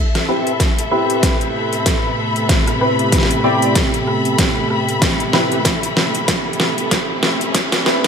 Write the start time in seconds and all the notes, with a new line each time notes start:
Already playing: A3 C4 A4 B4 E5 G5, riser
0.15 cross-stick, snare, closed hi-hat
0.28 C4 E4 G4 B4
0.37 B5
0.47 closed hi-hat
0.60 kick, snare, closed hi-hat
0.78 closed hi-hat
0.91 C4 E4 G4 B4
1.10 closed hi-hat
1.23 kick, snare, closed hi-hat
1.41 closed hi-hat
1.73 closed hi-hat
1.86 kick, snare, closed hi-hat
2.36 closed hi-hat
2.49 kick, snare, closed hi-hat
2.67 cross-stick, closed hi-hat
2.81 C4 E4 G4 B4
2.99 closed hi-hat
3.12 kick, snare, closed hi-hat
3.18 snare
3.23 snare
3.31 closed hi-hat
3.44 C4 E4 G4 D5
3.62 closed hi-hat
3.75 kick, snare, closed hi-hat
3.94 closed hi-hat
4.07 cross-stick
4.25 closed hi-hat
4.39 kick, snare, closed hi-hat
4.70 cross-stick
4.89 closed hi-hat
5.02 kick, snare, closed hi-hat
5.20 closed hi-hat
5.33 C4 E4 G4 B4, snare
5.52 closed hi-hat
5.65 kick, snare, closed hi-hat
5.83 closed hi-hat
5.97 snare
6.15 closed hi-hat
6.28 kick, snare, closed hi-hat
6.53 closed hi-hat
6.60 snare
6.78 closed hi-hat
6.91 kick, snare, closed hi-hat
7.23 snare
7.41 closed hi-hat
7.55 kick, snare, closed hi-hat
7.72 snare, closed hi-hat
7.86 C4 E4 G4 B4, snare